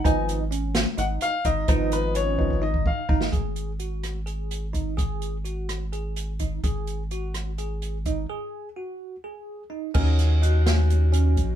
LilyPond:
<<
  \new Staff \with { instrumentName = "Vibraphone" } { \time 7/8 \key gis \minor \tempo 4 = 127 r2. r8 | r2. r8 | r2. r8 | r2. r8 |
r2. r8 | r2. r8 | dis'4 fis'2~ fis'8 | }
  \new Staff \with { instrumentName = "Grand piano" } { \time 7/8 \key gis \minor gis''8 r4. fis''8 eis''8 dis''8~ | dis''8 b'8 cis''4 dis''8 eis''4 | r2. r8 | r2. r8 |
r2. r8 | r2. r8 | <cis' dis' fis' ais'>2.~ <cis' dis' fis' ais'>8 | }
  \new Staff \with { instrumentName = "Grand piano" } { \time 7/8 \key gis \minor <eis b dis'>8 r2. | <eis b dis'>4. <eis b dis'>8 r4. | r2. r8 | r2. r8 |
r2. r8 | r2. r8 | r2. r8 | }
  \new Staff \with { instrumentName = "Tine electric piano" } { \time 7/8 \key gis \minor dis'4 cis'4 dis'4 dis'8 | dis'4 cis'4 dis'4 dis'8 | gis'4 fis'4 gis'4 dis'8 | gis'4 fis'4 gis'4 dis'8 |
gis'4 fis'4 gis'4 dis'8 | gis'4 fis'4 gis'4 dis'8 | cis'4 dis'8 cis'4 cis'4 | }
  \new Staff \with { instrumentName = "Analog synth bass" } { \clef bass \time 7/8 \key gis \minor gis,,2 gis,,8 r8 gis,,8 | gis,,2. gis,,8 | gis,,2.~ gis,,8~ | gis,,2.~ gis,,8 |
gis,,2.~ gis,,8 | r2. r8 | dis,2. ais,,8 | }
  \new DrumStaff \with { instrumentName = "Drums" } \drummode { \time 7/8 <hh bd>8 hh8 hh8 <hh sn>8 hh8 hh8 <hh bd>8 | <hh bd>8 hh8 hh8 bd16 bd8 bd16 bd8 bd16 sn16 | <hh bd>8 hh8 hh8 <hh ss>8 hh8 hh8 <hh bd>8 | <hh bd>8 hh8 hh8 <hh ss>8 hh8 hh8 <hh bd>8 |
<hh bd>8 hh8 hh8 <hh ss>8 hh8 hh8 <hh bd>8 | r4. r4 r4 | <cymc bd>8 <hh sn>8 hh8 <hh sn>8 hh8 hh8 <hh bd>8 | }
>>